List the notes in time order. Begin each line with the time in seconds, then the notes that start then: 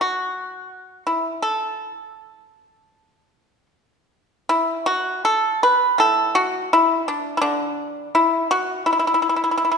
Already playing: E3
0.01 F#4
1.07 E4
1.42 A4
4.49 E4
4.86 F#4
5.25 A4
5.63 B4
5.98 A2 A4
6.35 F#4
6.73 E4
7.08 D4
7.37 E4
7.41 D3 D4
8.15 E4
8.51 F#4
8.86 E4
8.93 E4
8.99 E4
9.07 E4
9.14 E4
9.22 E4
9.29 E4
9.36 E4
9.44 E4
9.51 E4
9.57 E4
9.65 E4
9.71 E4